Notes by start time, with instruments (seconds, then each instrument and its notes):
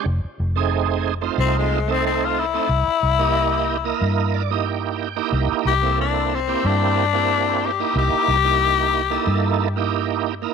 0.06 fingered electric bass F1
0.25 muted fingered electric bass stroke
0.40 fingered electric bass F1
0.56 tonewheel organ A3 C4 D#4 G#4
1.21 tonewheel organ A3 C4 D#4 F4
1.38 fingered electric bass C2, tenor saxophone C4
1.59 tenor saxophone G#3
1.88 tonewheel organ A3 C4 D#4 A4, tenor saxophone C4
2.06 tenor saxophone C4
2.25 tenor saxophone F4
2.39 tenor saxophone E4
2.54 tonewheel organ A3 C4 D#4 A4
2.69 fingered electric bass C2
3.03 fingered electric bass C2
3.19 tonewheel organ A#3 E4 G4 D#5
3.84 tonewheel organ A#3 E4 A#4 D#5
4.01 fingered electric bass G2
4.34 tonewheel organ D5
4.50 tonewheel organ A#3 D#4 E4 G4 D#5
4.66 tonewheel organ G5
4.99 tonewheel organ G5
5.16 tonewheel organ A#3 D#4 E4 G4
5.32 fingered electric bass C2
5.65 fingered electric bass C2, tenor saxophone G4
5.82 tonewheel organ A#3 C4 E4 A4
6.01 tenor saxophone D4
6.35 tenor saxophone C4
6.48 tonewheel organ A#3 C4 E4 G4
6.65 fingered electric bass G2, tenor saxophone D4
7.13 tonewheel organ A#3 C4 E4 G4
7.66 tenor saxophone G4
7.79 tonewheel organ A#3 D#4 E4 G4
7.95 fingered electric bass C2, tenor saxophone G4
8.13 muted fingered electric bass stroke
8.28 fingered electric bass C2
8.44 tonewheel organ A#3 D#4 E4 G4
9.10 tonewheel organ A#3 D#4 E4 A4
9.27 fingered electric bass G2
9.76 tonewheel organ A#3 D#4 E4 G4
10.42 tonewheel organ A#3 D#4 E4 A#4